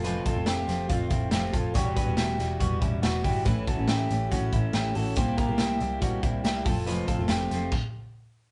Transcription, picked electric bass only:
0.00 0.18 F1 medium
0.36 0.45 F1 medium
0.47 0.64 F1 medium
0.69 0.86 F1 medium
0.90 1.07 F1 medium
1.11 1.28 F1 medium
1.31 1.49 F1 medium
1.54 1.71 F1 medium
1.75 1.93 E1 medium
2.07 2.16 E1 medium
2.18 2.35 E1 medium
2.39 2.57 E1 medium
2.61 2.78 E1 loud
2.82 2.99 E1 medium
3.03 3.21 E1 medium
3.25 3.42 G1 medium
3.46 3.63 A1 medium
3.77 3.86 A1 medium
3.89 4.06 A1 medium
4.11 4.28 A1 medium
4.32 4.49 A1 medium
4.53 4.70 A1 medium
4.74 4.91 A1 medium
4.96 5.13 A1 medium
5.17 5.34 C2 loud
5.49 5.57 C2 medium
5.60 5.77 C2 medium
5.81 5.98 C2 medium
6.02 6.19 C2 medium
6.23 6.40 C2 medium
6.44 6.62 C2 medium
6.66 7.00 F1 medium
7.19 7.28 F1 medium
7.30 7.47 F1 medium
7.51 7.68 F1 medium

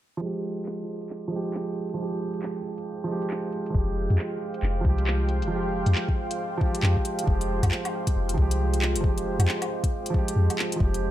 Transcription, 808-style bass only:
3.75 4.08 F1 medium
4.10 4.18 F2 medium
4.63 4.83 F1 medium
4.85 5.44 C2 medium
5.42 5.85 F1 medium
5.86 5.94 F2 medium
6.83 6.96 F2 medium
7.27 7.61 F1 loud
7.63 7.71 F2 medium
8.16 8.36 F1 medium
8.38 8.97 C2 medium
8.95 9.38 F1 medium
9.39 9.47 F2 medium
10.36 10.49 F2 medium
10.80 11.11 F1 medium

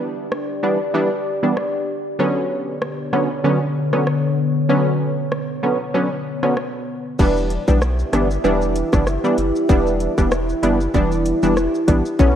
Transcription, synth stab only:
0.00 0.27 E3 medium
0.00 0.27 G3 medium
0.00 0.27 B3 medium
0.00 0.28 D4 loud
0.63 0.78 E3 medium
0.63 0.78 G3 medium
0.63 0.78 B3 medium
0.63 0.78 D4 medium
0.94 1.09 E3 medium
0.94 1.09 G3 medium
0.94 1.09 B3 medium
0.94 1.09 D4 loud
1.43 1.55 E3 medium
1.43 1.55 G3 medium
1.43 1.55 B3 medium
1.43 1.55 D4 medium
2.19 2.77 D3 medium
2.19 2.77 F#3 medium
2.19 2.77 B3 medium
2.19 2.78 C#4 loud
3.13 3.28 D3 medium
3.13 3.28 F#3 medium
3.13 3.28 B3 medium
3.13 3.28 C#4 medium
3.44 3.59 D3 medium
3.44 3.59 F#3 medium
3.44 3.59 B3 medium
3.44 3.59 C#4 loud
3.93 4.05 D3 medium
3.93 4.05 F#3 medium
3.93 4.05 B3 medium
3.93 4.05 C#4 medium
4.69 5.27 D3 medium
4.69 5.27 F#3 medium
4.69 5.27 B3 medium
4.69 5.28 C#4 loud
5.63 5.78 D3 medium
5.63 5.78 F#3 medium
5.63 5.78 B3 medium
5.63 5.78 C#4 medium
5.94 6.09 D3 loud
5.94 6.09 F#3 medium
5.94 6.09 B3 medium
5.94 6.09 C#4 loud
6.43 6.55 D3 medium
6.43 6.55 F#3 medium
6.43 6.55 B3 medium
6.43 6.55 C#4 medium
7.19 7.64 E3 loud
7.19 7.64 G3 medium
7.19 7.64 B3 medium
7.19 7.64 D4 loud
7.68 7.80 E3 medium
7.68 7.80 G3 medium
7.68 7.80 B3 medium
7.68 7.80 D4 medium
8.13 8.28 E3 medium
8.13 8.28 G3 medium
8.13 8.28 B3 medium
8.13 8.28 D4 medium
8.44 8.89 E3 medium
8.44 8.89 G3 medium
8.44 8.89 B3 medium
8.44 8.89 D4 loud
8.93 9.05 E3 medium
8.93 9.05 G3 medium
8.93 9.05 B3 medium
8.93 9.05 D4 medium
9.24 9.36 E3 medium
9.24 9.36 G3 medium
9.24 9.36 B3 medium
9.24 9.36 D4 medium
9.69 10.14 E3 loud
9.69 10.14 G3 medium
9.69 10.14 B3 medium
9.69 10.14 D4 loud
10.18 10.30 E3 medium
10.18 10.30 G3 medium
10.18 10.30 B3 medium
10.18 10.30 D4 medium
10.63 10.78 E3 medium
10.63 10.78 G3 medium
10.63 10.78 B3 medium
10.63 10.78 D4 medium
10.94 11.39 E3 medium
10.94 11.39 G3 medium
10.94 11.39 B3 medium
10.94 11.39 D4 loud
11.43 11.55 E3 medium
11.43 11.55 G3 medium
11.43 11.55 B3 medium
11.43 11.55 D4 medium
11.88 12.03 E3 medium
11.88 12.03 G3 medium
11.88 12.03 B3 medium
11.88 12.03 D4 medium
12.19 12.36 D3 loud
12.19 12.36 F#3 medium
12.19 12.36 B3 medium
12.19 12.36 C#4 loud

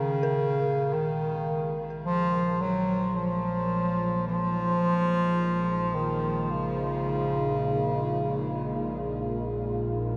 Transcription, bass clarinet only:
0.00 0.95 C#3 medium
0.93 1.78 D#3 medium
2.04 2.62 F3 loud
2.61 3.15 F#3 medium
3.16 4.24 F3 medium
4.27 5.96 F3 loud
5.95 6.52 D#3 medium
6.51 9.90 C#3 medium

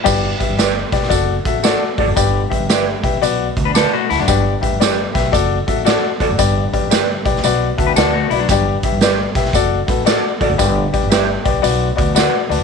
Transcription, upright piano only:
0.04 0.88 G2 medium
0.04 0.28 G4 loud
0.04 0.29 B4 loud
0.04 0.29 D5 loud
0.39 0.52 G4 medium
0.39 0.52 B4 medium
0.39 0.52 E5 medium
0.57 0.81 G4 medium
0.57 0.82 B4 medium
0.57 0.82 D5 medium
0.92 1.05 G4 medium
0.92 1.05 B4 medium
0.92 1.05 D5 medium
1.09 1.33 F#4 loud
1.09 1.34 A4 loud
1.09 1.34 D5 loud
1.45 1.58 F#4 medium
1.45 1.58 A4 medium
1.45 1.59 E5 medium
1.63 1.87 F#4 loud
1.63 1.87 A4 loud
1.63 1.88 D5 loud
1.97 2.10 F#4 medium
1.97 2.11 A4 medium
1.97 2.11 D5 medium
2.16 3.00 G2 medium
2.16 2.40 G4 loud
2.16 2.40 B4 loud
2.16 2.40 D5 loud
2.50 2.63 G4 medium
2.50 2.63 B4 medium
2.50 2.63 E5 medium
2.69 2.93 G4 medium
2.69 2.93 B4 medium
2.69 2.93 E5 medium
3.03 3.16 G4 medium
3.03 3.16 B4 medium
3.03 3.16 E5 medium
3.22 4.05 B2 medium
3.22 3.45 F#4 loud
3.22 3.46 B4 loud
3.22 3.46 D5 loud
3.74 3.90 B5 medium
3.74 3.91 D6 medium
3.92 4.08 B5 medium
4.09 4.27 E5 medium
4.09 4.17 F#5 medium
4.09 4.18 A5 medium
4.19 4.27 D5 medium
4.19 4.44 F#5 medium
4.28 5.11 G2 medium
4.28 4.51 G4 loud
4.28 4.51 B4 loud
4.28 4.52 D5 loud
4.61 4.74 G4 medium
4.61 4.74 B4 medium
4.61 4.75 E5 medium
4.79 5.03 G4 medium
4.79 5.04 B4 medium
4.79 5.04 D5 medium
5.13 5.27 G4 medium
5.13 5.27 B4 medium
5.13 5.27 E5 loud
5.32 5.56 F#4 loud
5.32 5.56 A4 loud
5.32 5.56 D5 loud
5.67 5.80 F#4 medium
5.67 5.80 A4 medium
5.67 5.80 E5 medium
5.85 6.09 F#4 loud
5.85 6.09 A4 loud
5.85 6.09 D5 loud
6.20 6.33 F#4 medium
6.20 6.33 A4 medium
6.20 6.33 D5 medium
6.38 7.22 G2 medium
6.38 6.62 G4 loud
6.38 6.62 B4 loud
6.38 6.62 D5 loud
6.73 6.85 G4 medium
6.73 6.85 B4 medium
6.73 6.86 D5 medium
6.89 7.14 G4 medium
6.89 7.14 B4 medium
6.89 7.14 D5 medium
7.25 7.38 G4 medium
7.25 7.38 B4 medium
7.25 7.38 D5 medium
7.43 8.27 B2 medium
7.43 7.67 F#4 loud
7.43 7.67 B4 loud
7.43 7.67 D5 loud
7.78 7.90 F#4 medium
7.78 7.90 B4 medium
7.78 7.91 E5 medium
7.78 7.87 A5 medium
7.89 7.97 G5 medium
7.97 8.20 F#4 loud
7.97 8.20 B4 loud
7.97 8.12 D5 loud
7.97 8.13 F#5 medium
8.13 8.31 D5 medium
8.32 8.44 F#4 medium
8.32 8.44 B4 medium
8.32 8.44 D5 medium
8.50 9.33 G2 medium
8.50 8.73 G4 loud
8.50 8.73 B4 loud
8.50 8.74 D5 loud
8.84 8.96 G4 medium
8.84 8.96 B4 medium
8.84 8.96 E5 medium
9.02 9.25 G4 medium
9.02 9.25 B4 medium
9.02 9.26 D5 medium
9.35 9.48 G4 medium
9.35 9.49 B4 medium
9.35 9.49 E5 medium
9.54 9.77 F#4 loud
9.54 9.78 A4 loud
9.54 9.78 D5 loud
9.87 10.00 F#4 medium
9.87 10.01 A4 medium
9.87 10.01 B4 medium
10.05 10.29 F#4 loud
10.05 10.30 A4 loud
10.05 10.30 D5 loud
10.40 10.53 F#4 medium
10.40 10.53 A4 medium
10.40 10.54 D5 medium
10.58 11.42 G2 medium
10.58 10.82 G4 loud
10.58 10.82 B4 loud
10.58 10.82 D5 loud
10.93 11.06 G4 medium
10.93 11.06 B4 medium
10.93 11.06 D5 medium
11.10 11.34 G4 medium
11.10 11.34 B4 medium
11.10 11.34 E5 medium
11.44 11.58 G4 medium
11.44 11.58 B4 medium
11.44 11.58 D5 loud
11.62 12.46 B2 medium
11.62 11.86 F#4 loud
11.62 11.87 B4 loud
11.62 11.87 D5 loud
11.96 12.10 F#4 medium
11.96 12.10 B4 medium
11.96 12.10 D5 medium
12.15 12.39 F#4 loud
12.15 12.39 B4 loud
12.15 12.40 D5 loud
12.15 12.48 F#5 medium
12.49 12.62 F#4 medium
12.49 12.63 B4 medium
12.49 12.63 D5 medium
12.49 12.63 A5 medium

